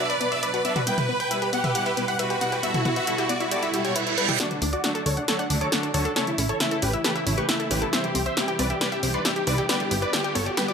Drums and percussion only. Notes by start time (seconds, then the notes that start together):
0.10 closed hi-hat
0.21 closed hi-hat
0.32 closed hi-hat
0.43 closed hi-hat
0.54 closed hi-hat
0.65 closed hi-hat
0.76 closed hi-hat, mid tom
0.87 closed hi-hat
0.98 closed hi-hat, mid tom
1.20 closed hi-hat
1.31 closed hi-hat
1.42 closed hi-hat
1.53 closed hi-hat
1.64 closed hi-hat, mid tom
1.75 closed hi-hat
1.86 closed hi-hat
1.97 closed hi-hat
2.08 closed hi-hat
2.19 closed hi-hat
2.30 closed hi-hat
2.41 closed hi-hat
2.52 closed hi-hat
2.63 closed hi-hat
2.74 closed hi-hat, mid tom
2.85 closed hi-hat, mid tom
2.96 closed hi-hat
3.07 closed hi-hat
3.18 closed hi-hat
3.29 closed hi-hat
3.40 closed hi-hat
3.51 closed hi-hat
3.63 closed hi-hat
3.74 closed hi-hat
3.85 closed hi-hat
3.96 closed hi-hat
4.07 closed hi-hat
4.18 closed hi-hat
4.29 closed hi-hat, mid tom
4.40 snare, closed hi-hat
4.51 closed hi-hat, mid tom
4.62 open hi-hat
4.73 closed hi-hat
4.84 snare, closed hi-hat
4.95 closed hi-hat
5.06 open hi-hat
5.17 closed hi-hat, mid tom
5.28 snare, closed hi-hat
5.39 closed hi-hat
5.50 open hi-hat
5.61 closed hi-hat
5.72 snare, closed hi-hat
5.83 closed hi-hat
5.94 open hi-hat
6.05 closed hi-hat
6.16 snare, closed hi-hat
6.27 closed hi-hat, mid tom
6.38 open hi-hat
6.49 closed hi-hat
6.60 snare, closed hi-hat
6.71 closed hi-hat
6.82 open hi-hat
6.93 closed hi-hat
7.04 snare, closed hi-hat
7.16 closed hi-hat
7.27 open hi-hat
7.38 closed hi-hat
7.49 snare, closed hi-hat
7.60 closed hi-hat
7.71 open hi-hat
7.82 closed hi-hat, mid tom
7.93 snare, closed hi-hat
8.04 closed hi-hat, mid tom
8.15 open hi-hat
8.26 closed hi-hat
8.37 snare, closed hi-hat
8.48 closed hi-hat
8.59 open hi-hat
8.70 closed hi-hat, mid tom
8.81 snare, closed hi-hat
8.92 closed hi-hat
9.03 open hi-hat
9.14 closed hi-hat
9.25 snare, closed hi-hat
9.36 closed hi-hat
9.47 open hi-hat
9.58 closed hi-hat
9.69 snare, closed hi-hat
9.80 closed hi-hat, mid tom
9.91 open hi-hat
10.02 closed hi-hat
10.13 snare, closed hi-hat
10.24 closed hi-hat
10.35 open hi-hat
10.46 closed hi-hat
10.57 snare, closed hi-hat
10.68 closed hi-hat